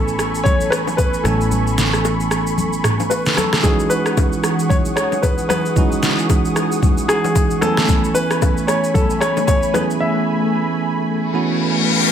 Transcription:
0.00 1.21 A1 medium
0.00 1.21 E3 medium
0.00 1.21 A3 medium
0.00 1.21 B3 medium
0.00 1.22 C#4 medium
0.00 0.47 A4 loud
0.00 3.60 A4 medium
0.00 1.22 G#5 medium
0.00 3.60 G#5 medium
0.00 3.60 B5 medium
0.00 12.09 C#6 medium
0.08 shaker soft
0.19 cross-stick medium
0.19 shaker medium
0.35 shaker medium
0.44 0.69 C#5 loud
0.44 kick loud
0.44 low conga medium
0.44 shaker medium
0.61 shaker medium
0.70 0.77 B4 loud
0.70 cross-stick loud
0.70 shaker medium
0.87 low bongo medium
0.87 shaker medium
0.97 1.25 B4 medium
0.97 kick medium
0.97 high bongo medium
0.97 shaker medium
1.14 shaker medium
1.24 3.33 A1 medium
1.24 3.33 E3 medium
1.24 3.33 A3 medium
1.24 3.34 B3 medium
1.24 3.34 C#4 medium
1.24 2.80 A4 medium
1.24 3.34 G#5 medium
1.24 cross-stick medium
1.24 low bongo medium
1.24 low conga medium
1.24 shaker medium
1.41 shaker medium
1.52 low conga medium
1.52 shaker medium
1.67 shaker medium
1.78 snare medium
1.78 low bongo medium
1.78 shaker loud
1.93 cross-stick medium
1.93 shaker soft
2.05 high bongo medium
2.05 shaker medium
2.20 shaker soft
2.31 cross-stick medium
2.31 shaker medium
2.47 shaker medium
2.58 low conga medium
2.58 shaker medium
2.73 shaker medium
2.84 cross-stick loud
2.84 mid tom medium
2.84 shaker medium
3.00 low bongo medium
3.00 shaker medium
3.10 3.38 B4 medium
3.10 high bongo medium
3.10 shaker medium
3.26 snare medium
3.26 shaker medium
3.36 3.64 A4 medium
3.36 cross-stick medium
3.36 low bongo medium
3.36 low conga medium
3.36 shaker medium
3.53 cross-stick medium
3.53 snare medium
3.53 shaker soft
3.63 5.72 E3 medium
3.63 7.58 E3 medium
3.63 5.72 G#3 medium
3.63 5.73 C#4 medium
3.63 5.73 D#4 medium
3.63 5.73 F#4 medium
3.63 3.91 G#4 medium
3.63 7.58 G#4 medium
3.63 7.58 F#5 medium
3.63 7.58 D#6 medium
3.63 kick loud
3.63 low conga medium
3.63 shaker medium
3.79 shaker medium
3.90 4.72 B4 medium
3.90 shaker loud
4.06 cross-stick medium
4.06 shaker medium
4.17 kick medium
4.17 high bongo medium
4.17 shaker medium
4.33 shaker soft
4.44 cross-stick medium
4.44 shaker medium
4.59 shaker medium
4.69 4.75 C#5 medium
4.69 kick loud
4.69 low conga medium
4.69 shaker medium
4.85 shaker medium
4.96 5.24 C#5 medium
4.96 cross-stick loud
4.96 shaker medium
5.12 low bongo medium
5.12 shaker medium
5.22 5.47 B4 medium
5.22 kick medium
5.22 high bongo medium
5.22 shaker medium
5.38 shaker medium
5.49 7.13 B4 loud
5.49 cross-stick medium
5.49 low bongo medium
5.49 low conga medium
5.49 shaker medium
5.66 shaker medium
5.75 7.58 E3 medium
5.75 7.58 G#3 medium
5.75 7.59 C#4 medium
5.75 7.59 D#4 medium
5.75 7.60 F#4 medium
5.75 kick loud
5.75 low conga medium
5.75 shaker medium
5.92 shaker medium
6.03 snare medium
6.03 shaker loud
6.19 shaker soft
6.30 kick medium
6.30 high bongo medium
6.30 shaker medium
6.45 shaker soft
6.56 cross-stick medium
6.56 shaker medium
6.72 shaker medium
6.82 kick loud
6.82 low conga medium
6.82 shaker medium
6.98 shaker medium
7.08 7.63 G#4 medium
7.08 cross-stick loud
7.08 shaker medium
7.24 low bongo medium
7.24 shaker medium
7.35 kick medium
7.35 high bongo medium
7.35 shaker medium
7.51 shaker medium
7.61 9.70 E3 medium
7.61 12.10 A3 medium
7.61 9.71 A3 medium
7.61 9.71 B3 medium
7.61 9.71 C#4 medium
7.61 8.11 A4 loud
7.61 12.09 G#5 medium
7.61 9.72 G#5 medium
7.61 12.10 B5 medium
7.61 cross-stick medium
7.61 low bongo medium
7.61 low conga medium
7.61 shaker medium
7.77 cross-stick medium
7.77 snare medium
7.77 shaker medium
7.88 kick loud
7.88 low conga medium
7.88 shaker medium
8.04 shaker medium
8.15 8.64 B4 loud
8.15 shaker loud
8.31 cross-stick medium
8.31 shaker medium
8.42 kick medium
8.42 high bongo medium
8.42 shaker medium
8.57 shaker soft
8.67 8.95 C#5 medium
8.67 cross-stick medium
8.67 shaker medium
8.84 shaker medium
8.94 9.22 A4 medium
8.94 kick loud
8.94 low conga medium
8.94 shaker medium
9.10 shaker medium
9.21 9.46 C#5 loud
9.21 cross-stick loud
9.21 shaker medium
9.37 low bongo medium
9.37 shaker medium
9.47 9.72 C#5 loud
9.47 kick medium
9.47 high bongo medium
9.47 shaker medium
9.63 shaker medium
9.73 11.30 E3 medium
9.73 11.31 A3 medium
9.73 11.31 B3 medium
9.73 11.31 C#4 medium
9.73 11.32 G#4 medium
9.73 9.80 B4 loud
9.73 cross-stick medium
9.73 low bongo medium
9.73 low conga medium
9.73 shaker medium
9.90 shaker soft
10.00 11.56 E5 loud
11.07 reverse cymbal medium
11.34 12.11 E3 medium
11.34 12.12 A3 medium
11.34 12.12 B3 medium
11.34 12.12 C#4 medium
11.34 12.12 F#4 medium

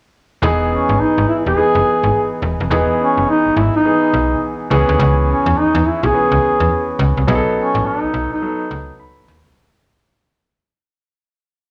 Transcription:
0.42 0.77 E1 loud
0.42 1.41 E3 medium
0.42 1.41 B3 medium
0.42 1.42 D#4 medium
0.42 1.42 G#4 loud
0.72 1.02 C#4 medium
0.89 0.97 G#1 medium
1.00 1.28 D#4 medium
1.18 1.25 G#1 medium
1.29 1.37 E4 medium
1.46 1.54 E1 medium
1.46 2.28 G#4 loud
1.56 2.55 E3 medium
1.56 2.56 B3 medium
1.56 2.56 D#4 medium
1.56 2.56 G#4 medium
1.75 1.82 F#1 medium
2.03 2.11 G#1 medium
2.42 2.55 E1 medium
2.60 2.68 F1 medium
2.70 2.84 E1 loud
2.70 3.70 E3 loud
2.70 3.70 B3 medium
2.70 3.70 D#4 medium
2.70 3.70 G#4 medium
3.00 3.26 C#4 medium
3.17 3.25 F#1 medium
3.29 3.59 D#4 loud
3.46 3.50 G#1 medium
3.56 3.70 G#1 medium
3.56 3.75 E4 loud
3.76 4.57 D#4 loud
3.85 4.69 E3 medium
3.85 4.69 B3 medium
3.85 4.71 D#4 medium
3.85 4.70 G#4 medium
4.13 4.35 B1 medium
4.70 4.84 C#2 loud
4.70 5.70 E3 loud
4.70 5.70 B3 medium
4.70 5.70 C#4 medium
4.70 5.70 G#4 loud
4.89 4.96 D2 medium
4.99 5.34 C#2 loud
5.30 5.60 C#4 medium
5.46 5.54 E2 loud
5.57 5.64 E2 medium
5.57 5.88 D#4 loud
5.75 5.82 E2 loud
5.87 6.07 E4 medium
6.03 6.11 B1 medium
6.03 6.90 G#4 loud
6.13 7.13 E3 medium
6.13 7.13 B3 medium
6.13 7.13 C#4 medium
6.13 7.13 G#4 medium
6.32 6.39 C#2 medium
6.60 6.68 E2 medium
6.99 7.13 C#2 loud
7.17 7.25 C2 medium
7.27 7.41 B1 loud
7.27 8.27 F#3 medium
7.27 8.27 B3 medium
7.27 8.27 D#4 medium
7.27 7.36 G#4 medium
7.35 8.31 A4 loud
7.58 7.88 C#4 medium
7.75 7.82 A1 loud
7.86 8.03 D4 loud
8.03 8.07 B1 medium
8.03 8.32 D#4 loud
8.14 8.27 B1 medium
8.33 8.96 D#4 loud
8.42 9.41 F#3 medium
8.42 9.41 B3 medium
8.42 9.42 D#4 medium
8.42 9.42 A4 medium
8.71 8.92 C#2 loud
9.00 9.53 B5 medium
9.28 9.41 D#2 loud
9.46 9.54 C2 medium

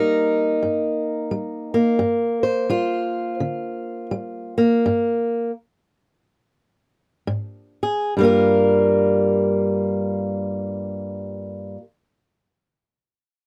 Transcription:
0.00 0.58 G3 medium
0.00 1.74 A#3 medium
0.00 1.97 D#4 medium
0.00 2.43 A#4 medium
0.63 1.26 G2 medium
1.31 1.95 G3 medium
1.74 4.56 A#3 medium
1.99 2.63 G2 medium
2.43 4.81 C5 medium
2.70 3.34 G3 medium
2.70 4.82 F4 medium
3.40 4.06 D3 medium
4.11 4.79 G3 medium
4.58 5.50 A#3 medium
4.86 5.50 G2 medium
7.27 8.10 G#2 medium
7.83 8.13 G#4 medium
8.17 11.76 G2 medium
8.17 11.78 G3 medium
8.17 11.79 A#3 medium
8.23 11.82 F4 medium
8.23 11.83 A#4 medium

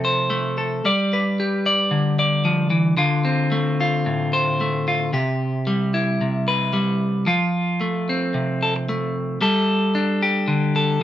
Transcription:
0.00 0.81 C3 medium
0.00 0.81 F3 medium
0.00 0.30 A3 medium
0.00 0.85 C4 medium
0.00 0.57 A4 medium
0.05 0.82 C5 medium
0.30 0.85 A3 medium
0.58 0.88 A4 medium
0.85 2.99 G3 medium
0.85 1.66 D5 medium
1.13 2.96 B4 medium
1.40 2.96 G4 medium
1.66 2.18 D5 medium
1.91 2.95 D3 medium
2.19 2.96 D5 medium
2.45 2.70 F3 medium
2.70 2.97 E3 medium
2.97 5.12 D3 medium
2.97 3.79 F4 medium
3.25 5.94 C4 medium
3.52 4.59 A3 medium
3.81 4.87 F4 medium
4.06 5.13 A2 medium
4.33 5.10 C5 medium
4.61 5.10 A3 medium
4.88 5.10 F4 medium
5.13 6.20 C3 medium
5.13 7.24 G4 medium
5.67 6.72 G3 medium
5.94 7.24 E4 medium
6.21 7.24 C3 medium
6.48 7.24 B4 medium
6.73 7.27 G3 medium
7.26 9.37 F3 medium
7.26 9.38 F4 medium
7.81 8.89 A3 medium
8.09 9.42 C4 medium
8.34 9.38 C3 medium
8.63 8.75 A4 medium
8.76 muted clean electric guitar stroke soft
8.89 9.41 A3 medium
9.41 11.03 G3 medium
9.41 10.75 A4 medium
9.95 11.03 D4 medium
10.23 11.03 G4 medium
10.48 11.01 D3 medium
10.76 11.03 A4 medium

